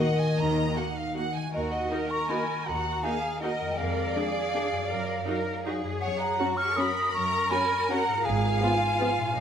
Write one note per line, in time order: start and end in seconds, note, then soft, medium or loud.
0.00 0.36 D#3 medium
0.00 1.31 D#3 medium
0.00 0.55 A#3 soft
0.00 0.46 D#4 soft
0.00 0.27 F#4 soft
0.00 0.18 D#5 soft
0.00 1.35 D#5 medium
0.00 0.19 F#5 soft
0.00 0.96 F#5 soft
0.00 1.06 D#6 soft
0.19 0.75 D#5 soft
0.19 0.38 G#5 medium
0.28 0.65 F#4 soft
0.37 0.70 D#2 medium
0.37 1.35 D#3 soft
0.37 0.70 D#3 medium
0.37 0.77 A#5 medium
0.47 3.80 D#4 soft
0.57 1.39 A#3 soft
0.67 1.43 F#4 soft
0.76 0.85 A#3 soft
0.76 0.84 F#4 soft
0.76 1.34 D#5 soft
0.76 0.97 F#5 medium
0.87 1.25 A#4 soft
0.97 1.17 F5 medium
0.97 1.15 F#5 soft
1.07 3.80 D#6 soft
1.16 1.24 A#3 soft
1.16 1.24 F#4 soft
1.16 3.80 F#5 soft
1.16 1.35 F#5 soft
1.26 3.80 A#4 soft
1.36 3.71 D#3 soft
1.36 1.48 D#5 soft
1.36 1.54 G#5 soft
1.40 3.73 A#3 soft
1.44 3.76 F#4 soft
1.49 3.78 D#5 soft
1.53 1.85 D#2 soft
1.53 1.89 F#4 soft
1.53 1.71 A#4 medium
1.53 1.60 D#5 medium
1.72 2.11 D#5 soft
1.72 2.12 F#5 medium
1.91 2.06 A#3 soft
1.91 1.99 D#4 soft
1.91 2.06 D#4 soft
1.91 1.99 F#4 soft
1.91 1.99 A#4 soft
1.91 2.67 A#4 soft
2.10 2.30 A#5 medium
2.10 2.32 C#6 medium
2.30 2.43 A#3 soft
2.30 2.38 D#4 soft
2.30 2.43 D#4 soft
2.30 2.38 F#4 soft
2.30 2.38 A#4 soft
2.30 2.67 G#5 soft
2.30 2.66 B5 medium
2.66 2.98 D#2 soft
2.66 3.04 F#4 soft
2.66 3.04 F#5 medium
2.66 3.05 A#5 medium
3.03 3.18 A#3 soft
3.03 3.17 D#4 soft
3.03 3.12 D#4 soft
3.03 3.12 F#4 soft
3.03 3.43 G#4 soft
3.03 3.12 A#4 soft
3.03 3.42 F5 medium
3.03 3.41 G#5 medium
3.41 3.54 A#3 soft
3.41 3.54 D#4 soft
3.41 3.51 D#4 soft
3.41 3.51 F#4 soft
3.41 4.14 A#4 soft
3.41 3.51 A#4 soft
3.41 3.78 D#5 medium
3.41 3.73 F#5 medium
3.61 4.83 F2 soft
3.65 4.85 G#3 soft
3.70 4.87 G#4 soft
3.70 3.80 G5 soft
3.74 4.89 D5 soft
3.74 5.84 F5 medium
3.78 4.09 F2 medium
3.78 5.84 D5 medium
4.15 4.29 G#3 soft
4.15 4.30 D4 soft
4.15 4.24 D4 soft
4.15 4.90 G#4 medium
4.15 4.23 G#4 soft
4.15 4.24 G#4 soft
4.54 4.68 G#3 soft
4.54 4.63 D4 soft
4.54 4.68 D4 soft
4.54 4.62 G#4 soft
4.54 4.63 G#4 soft
4.72 5.82 F#2 soft
4.76 5.87 A#3 soft
4.80 5.91 F#4 soft
4.85 6.01 D#5 soft
4.90 5.20 F#2 medium
4.90 5.25 A#4 soft
5.26 5.41 F#3 soft
5.26 5.35 D#4 soft
5.26 5.41 D#4 soft
5.26 5.35 F#4 soft
5.26 5.65 A#4 soft
5.26 5.35 A#4 soft
5.65 5.80 F#3 soft
5.65 5.74 D#4 soft
5.65 5.80 D#4 soft
5.65 5.74 F#4 soft
5.65 6.38 G#4 medium
5.65 5.73 A#4 soft
5.83 8.18 F#2 soft
5.88 8.20 A#3 soft
5.92 8.22 F#4 soft
5.97 8.24 C#5 soft
6.01 6.33 F#2 medium
6.01 6.18 C#5 medium
6.01 6.07 F#5 medium
6.19 6.58 F#5 medium
6.19 6.58 A#5 medium
6.39 6.53 F#3 soft
6.39 6.47 C#4 soft
6.39 6.53 C#4 soft
6.39 6.77 F#4 medium
6.39 6.47 F#4 soft
6.39 6.48 A#4 soft
6.57 6.77 C#6 medium
6.57 6.78 F6 medium
6.77 6.91 F#3 soft
6.77 6.90 C#4 soft
6.77 6.86 C#4 soft
6.77 6.86 F#4 soft
6.77 8.25 A#4 medium
6.77 6.85 A#4 soft
6.77 7.14 B5 medium
6.77 7.13 D#6 medium
7.14 7.44 F#2 medium
7.14 7.51 A#5 medium
7.14 7.52 C#6 medium
7.51 7.65 F#3 soft
7.51 7.65 C#4 medium
7.51 7.59 C#4 soft
7.51 7.59 F#4 soft
7.51 7.59 A#4 soft
7.51 7.90 G#5 medium
7.51 7.90 B5 medium
7.89 8.02 F#3 medium
7.89 8.02 C#4 soft
7.89 7.98 C#4 soft
7.89 7.98 F#4 soft
7.89 7.98 A#4 soft
7.89 8.26 F#5 medium
7.89 8.27 A#5 medium
8.08 9.29 G#2 soft
8.12 9.31 B3 soft
8.17 9.33 F4 soft
8.21 9.35 B4 soft
8.21 9.40 G#5 medium
8.25 8.56 G#1 medium
8.25 8.62 G#4 medium
8.25 9.40 F5 medium
8.61 8.75 F3 medium
8.61 8.75 B3 medium
8.61 8.71 B3 soft
8.61 9.36 F4 medium
8.61 8.71 F4 soft
8.61 8.71 B4 soft
8.99 9.12 F3 medium
8.99 9.12 B3 soft
8.99 9.08 B3 soft
8.99 9.08 F4 soft
8.99 9.08 B4 medium
9.18 9.40 A#2 medium
9.22 9.40 C#4 soft
9.27 9.40 F#4 soft
9.31 9.40 A#4 medium
9.36 9.40 A#1 medium
9.36 9.40 D#4 medium